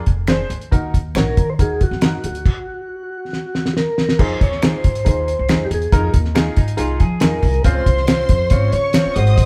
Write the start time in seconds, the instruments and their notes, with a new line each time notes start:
0.06 upright bass F1, kick, closed hi-hat
0.27 upright piano D4 G#4 C5, finger snap, snare, closed hi-hat
0.50 upright bass D2, closed hi-hat
0.61 closed hi-hat
0.71 upright bass D#2, upright piano D#4 F#4 A#4, kick, closed hi-hat
0.94 kick, closed hi-hat
1.15 upright bass A#1, upright piano D#4 F#4 C#5, tonewheel organ A#4, finger snap, snare, closed hi-hat
1.37 upright bass D#3, kick, closed hi-hat
1.50 tonewheel organ C5
1.59 upright bass D#2, upright piano D#4 F#4 A#4, tonewheel organ G#4, kick, closed hi-hat
1.81 tonewheel organ F#4, kick, closed hi-hat
1.91 upright bass F#2, snare
2.01 upright piano D#4 F#4 A#4, finger snap, snare, closed hi-hat
2.24 upright bass D2, tonewheel organ F#4, closed hi-hat
2.35 closed hi-hat
2.46 kick, crash
3.33 snare
3.55 snare
3.66 snare
3.77 tonewheel organ A#4, snare
3.98 snare
4.09 snare
4.19 upright bass F2, upright piano D#4 F4 G#4, tonewheel organ C5, kick, crash
4.41 upright bass D#2, tonewheel organ C#5, kick, closed hi-hat
4.52 snare
4.62 upright piano D#4 F4 G#4, tonewheel organ C5, finger snap, snare, closed hi-hat
4.84 upright bass G#2, kick, closed hi-hat
4.95 closed hi-hat
5.05 upright bass D#2, upright piano D#4 F4 G#4, kick, closed hi-hat
5.09 tonewheel organ C5
5.28 closed hi-hat
5.39 upright bass C2
5.49 upright bass F2, upright piano D#4 F4 G#4, finger snap, snare, closed hi-hat
5.65 tonewheel organ G4
5.71 upright bass E2, tonewheel organ G#4, closed hi-hat
5.82 closed hi-hat
5.92 upright bass F2, upright piano D#4 F4 A#4, kick, closed hi-hat
6.14 upright bass D#2, kick, closed hi-hat
6.25 snare
6.35 upright piano D#4 F4 G#4, finger snap, snare, closed hi-hat
6.57 upright bass G#2, clean electric guitar D#4, kick, closed hi-hat
6.68 closed hi-hat
6.77 upright bass C2, upright piano D#4 F4 G#4, clean electric guitar F4, closed hi-hat
7.00 upright bass F3, clean electric guitar G#4, kick, closed hi-hat
7.20 upright bass F2, upright piano D#4 F4 G#4, tonewheel organ A#4, finger snap, snare, closed hi-hat
7.42 upright bass C2, kick, open hi-hat
7.54 closed hi-hat
7.64 upright bass C#2, upright piano C4 C#4 F4, string section C5 C6, tonewheel organ C5, kick, closed hi-hat
7.86 upright bass C2, kick, closed hi-hat
7.97 snare
8.07 upright piano C4 C#4 F4, tonewheel organ C5, finger snap, snare, closed hi-hat
8.29 upright bass F2, kick, closed hi-hat
8.50 upright bass G#1, upright piano C4 C#4 F4, tonewheel organ C#5, kick, closed hi-hat
8.73 upright bass C#3, tonewheel organ C#5, string section C#5 C#6, closed hi-hat
8.93 upright piano C4 C#4 F4, finger snap, snare, closed hi-hat
9.06 muted upright bass stroke
9.16 upright bass G#1, upright piano G#3 C4 F#4, tonewheel organ C5, string section D#5 D#6, closed hi-hat
9.27 closed hi-hat
9.38 kick, closed hi-hat